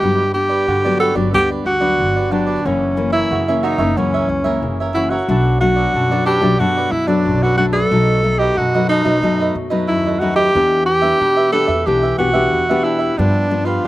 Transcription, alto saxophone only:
0, 0, Header, 1, 2, 480
1, 0, Start_track
1, 0, Key_signature, 1, "major"
1, 0, Tempo, 658617
1, 15, Time_signature, 4, 2, 24, 8
1, 10112, End_track
2, 0, Start_track
2, 0, Title_t, "Alto saxophone"
2, 0, Program_c, 0, 65
2, 0, Note_on_c, 0, 67, 80
2, 222, Note_off_c, 0, 67, 0
2, 248, Note_on_c, 0, 67, 75
2, 702, Note_off_c, 0, 67, 0
2, 729, Note_on_c, 0, 69, 72
2, 838, Note_off_c, 0, 69, 0
2, 982, Note_on_c, 0, 67, 72
2, 1088, Note_off_c, 0, 67, 0
2, 1212, Note_on_c, 0, 66, 84
2, 1690, Note_on_c, 0, 62, 69
2, 1701, Note_off_c, 0, 66, 0
2, 1937, Note_on_c, 0, 61, 62
2, 1948, Note_off_c, 0, 62, 0
2, 2276, Note_off_c, 0, 61, 0
2, 2280, Note_on_c, 0, 64, 75
2, 2600, Note_off_c, 0, 64, 0
2, 2600, Note_on_c, 0, 64, 43
2, 2649, Note_on_c, 0, 63, 69
2, 2660, Note_off_c, 0, 64, 0
2, 2897, Note_on_c, 0, 61, 61
2, 2907, Note_off_c, 0, 63, 0
2, 3374, Note_off_c, 0, 61, 0
2, 3603, Note_on_c, 0, 64, 73
2, 3716, Note_on_c, 0, 66, 77
2, 3727, Note_off_c, 0, 64, 0
2, 4082, Note_off_c, 0, 66, 0
2, 4086, Note_on_c, 0, 66, 81
2, 4540, Note_off_c, 0, 66, 0
2, 4563, Note_on_c, 0, 67, 76
2, 4806, Note_on_c, 0, 66, 81
2, 4817, Note_off_c, 0, 67, 0
2, 5041, Note_on_c, 0, 64, 74
2, 5052, Note_off_c, 0, 66, 0
2, 5155, Note_on_c, 0, 62, 69
2, 5166, Note_off_c, 0, 64, 0
2, 5413, Note_on_c, 0, 66, 74
2, 5424, Note_off_c, 0, 62, 0
2, 5517, Note_off_c, 0, 66, 0
2, 5521, Note_on_c, 0, 66, 67
2, 5578, Note_off_c, 0, 66, 0
2, 5634, Note_on_c, 0, 69, 85
2, 6110, Note_on_c, 0, 67, 77
2, 6121, Note_off_c, 0, 69, 0
2, 6247, Note_on_c, 0, 66, 82
2, 6258, Note_off_c, 0, 67, 0
2, 6474, Note_off_c, 0, 66, 0
2, 6479, Note_on_c, 0, 63, 79
2, 6979, Note_off_c, 0, 63, 0
2, 7200, Note_on_c, 0, 64, 70
2, 7433, Note_on_c, 0, 66, 63
2, 7444, Note_off_c, 0, 64, 0
2, 7544, Note_off_c, 0, 66, 0
2, 7548, Note_on_c, 0, 67, 82
2, 7894, Note_off_c, 0, 67, 0
2, 7914, Note_on_c, 0, 67, 84
2, 8373, Note_off_c, 0, 67, 0
2, 8397, Note_on_c, 0, 69, 76
2, 8644, Note_on_c, 0, 67, 76
2, 8655, Note_off_c, 0, 69, 0
2, 8874, Note_off_c, 0, 67, 0
2, 8878, Note_on_c, 0, 66, 80
2, 9357, Note_on_c, 0, 64, 69
2, 9368, Note_off_c, 0, 66, 0
2, 9606, Note_on_c, 0, 62, 74
2, 9617, Note_off_c, 0, 64, 0
2, 9949, Note_on_c, 0, 65, 74
2, 9959, Note_off_c, 0, 62, 0
2, 10112, Note_off_c, 0, 65, 0
2, 10112, End_track
0, 0, End_of_file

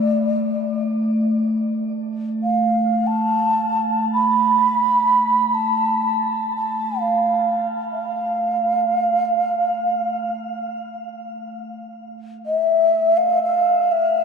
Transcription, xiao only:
0, 0, Header, 1, 2, 480
1, 0, Start_track
1, 0, Tempo, 500000
1, 13673, End_track
2, 0, Start_track
2, 0, Title_t, "Xiao"
2, 0, Program_c, 0, 77
2, 0, Note_on_c, 0, 74, 68
2, 803, Note_off_c, 0, 74, 0
2, 2335, Note_on_c, 0, 77, 70
2, 2947, Note_on_c, 0, 81, 85
2, 2961, Note_off_c, 0, 77, 0
2, 3957, Note_off_c, 0, 81, 0
2, 3962, Note_on_c, 0, 83, 93
2, 5323, Note_on_c, 0, 81, 79
2, 5337, Note_off_c, 0, 83, 0
2, 6292, Note_off_c, 0, 81, 0
2, 6298, Note_on_c, 0, 81, 71
2, 6722, Note_on_c, 0, 77, 74
2, 6737, Note_off_c, 0, 81, 0
2, 7371, Note_off_c, 0, 77, 0
2, 7610, Note_on_c, 0, 77, 66
2, 9926, Note_off_c, 0, 77, 0
2, 11964, Note_on_c, 0, 76, 81
2, 12643, Note_on_c, 0, 77, 85
2, 12658, Note_off_c, 0, 76, 0
2, 12887, Note_off_c, 0, 77, 0
2, 12893, Note_on_c, 0, 77, 90
2, 13363, Note_on_c, 0, 76, 91
2, 13377, Note_off_c, 0, 77, 0
2, 13673, Note_off_c, 0, 76, 0
2, 13673, End_track
0, 0, End_of_file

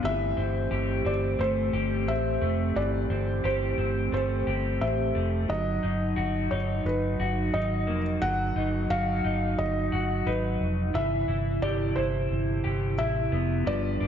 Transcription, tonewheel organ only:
0, 0, Header, 1, 2, 480
1, 0, Start_track
1, 0, Tempo, 681818
1, 21, Time_signature, 4, 2, 24, 8
1, 9907, End_track
2, 0, Start_track
2, 0, Title_t, "Tonewheel organ"
2, 0, Program_c, 0, 16
2, 23, Note_on_c, 0, 57, 59
2, 24, Note_on_c, 0, 60, 57
2, 24, Note_on_c, 0, 67, 66
2, 3834, Note_off_c, 0, 57, 0
2, 3834, Note_off_c, 0, 60, 0
2, 3834, Note_off_c, 0, 67, 0
2, 3861, Note_on_c, 0, 54, 59
2, 3862, Note_on_c, 0, 63, 65
2, 7673, Note_off_c, 0, 54, 0
2, 7674, Note_off_c, 0, 63, 0
2, 7704, Note_on_c, 0, 64, 69
2, 7710, Note_on_c, 0, 48, 60
2, 9603, Note_off_c, 0, 64, 0
2, 9606, Note_off_c, 0, 48, 0
2, 9618, Note_on_c, 0, 55, 64
2, 9618, Note_on_c, 0, 62, 56
2, 9621, Note_on_c, 0, 65, 55
2, 9621, Note_on_c, 0, 71, 67
2, 9907, Note_off_c, 0, 55, 0
2, 9907, Note_off_c, 0, 62, 0
2, 9907, Note_off_c, 0, 65, 0
2, 9907, Note_off_c, 0, 71, 0
2, 9907, End_track
0, 0, End_of_file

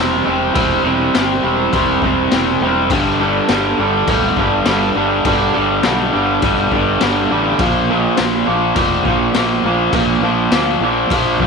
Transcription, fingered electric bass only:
0, 0, Header, 1, 2, 480
1, 0, Start_track
1, 0, Tempo, 585938
1, 462, Time_signature, 4, 2, 24, 8
1, 9395, End_track
2, 0, Start_track
2, 0, Title_t, "Fingered electric bass"
2, 0, Program_c, 0, 33
2, 0, Note_on_c, 0, 28, 99
2, 172, Note_off_c, 0, 28, 0
2, 215, Note_on_c, 0, 28, 97
2, 412, Note_off_c, 0, 28, 0
2, 452, Note_on_c, 0, 28, 98
2, 651, Note_off_c, 0, 28, 0
2, 687, Note_on_c, 0, 28, 96
2, 888, Note_off_c, 0, 28, 0
2, 941, Note_on_c, 0, 31, 83
2, 1137, Note_off_c, 0, 31, 0
2, 1178, Note_on_c, 0, 28, 85
2, 1375, Note_off_c, 0, 28, 0
2, 1419, Note_on_c, 0, 28, 90
2, 1616, Note_off_c, 0, 28, 0
2, 1650, Note_on_c, 0, 28, 95
2, 1851, Note_off_c, 0, 28, 0
2, 1900, Note_on_c, 0, 28, 90
2, 2097, Note_off_c, 0, 28, 0
2, 2136, Note_on_c, 0, 28, 96
2, 2381, Note_off_c, 0, 28, 0
2, 2381, Note_on_c, 0, 31, 90
2, 2773, Note_off_c, 0, 31, 0
2, 2861, Note_on_c, 0, 31, 87
2, 3058, Note_off_c, 0, 31, 0
2, 3104, Note_on_c, 0, 31, 84
2, 3300, Note_off_c, 0, 31, 0
2, 3331, Note_on_c, 0, 26, 91
2, 3533, Note_off_c, 0, 26, 0
2, 3573, Note_on_c, 0, 31, 91
2, 3774, Note_off_c, 0, 31, 0
2, 3819, Note_on_c, 0, 31, 95
2, 4017, Note_off_c, 0, 31, 0
2, 4061, Note_on_c, 0, 31, 87
2, 4259, Note_off_c, 0, 31, 0
2, 4295, Note_on_c, 0, 31, 96
2, 4495, Note_off_c, 0, 31, 0
2, 4560, Note_on_c, 0, 31, 96
2, 4750, Note_off_c, 0, 31, 0
2, 4795, Note_on_c, 0, 35, 80
2, 4987, Note_off_c, 0, 35, 0
2, 5037, Note_on_c, 0, 31, 80
2, 5228, Note_off_c, 0, 31, 0
2, 5265, Note_on_c, 0, 31, 90
2, 5461, Note_off_c, 0, 31, 0
2, 5495, Note_on_c, 0, 31, 95
2, 5695, Note_off_c, 0, 31, 0
2, 5750, Note_on_c, 0, 31, 94
2, 5944, Note_off_c, 0, 31, 0
2, 5997, Note_on_c, 0, 33, 101
2, 6187, Note_off_c, 0, 33, 0
2, 6211, Note_on_c, 0, 34, 97
2, 6606, Note_off_c, 0, 34, 0
2, 6716, Note_on_c, 0, 34, 90
2, 6906, Note_off_c, 0, 34, 0
2, 6942, Note_on_c, 0, 34, 89
2, 7138, Note_off_c, 0, 34, 0
2, 7171, Note_on_c, 0, 29, 97
2, 7371, Note_off_c, 0, 29, 0
2, 7411, Note_on_c, 0, 34, 98
2, 7611, Note_off_c, 0, 34, 0
2, 7665, Note_on_c, 0, 34, 102
2, 7859, Note_off_c, 0, 34, 0
2, 7891, Note_on_c, 0, 34, 91
2, 8090, Note_off_c, 0, 34, 0
2, 8130, Note_on_c, 0, 34, 95
2, 8330, Note_off_c, 0, 34, 0
2, 8365, Note_on_c, 0, 34, 91
2, 8566, Note_off_c, 0, 34, 0
2, 8609, Note_on_c, 0, 38, 94
2, 8808, Note_off_c, 0, 38, 0
2, 8840, Note_on_c, 0, 34, 91
2, 9043, Note_off_c, 0, 34, 0
2, 9095, Note_on_c, 0, 34, 91
2, 9291, Note_off_c, 0, 34, 0
2, 9332, Note_on_c, 0, 34, 97
2, 9395, Note_off_c, 0, 34, 0
2, 9395, End_track
0, 0, End_of_file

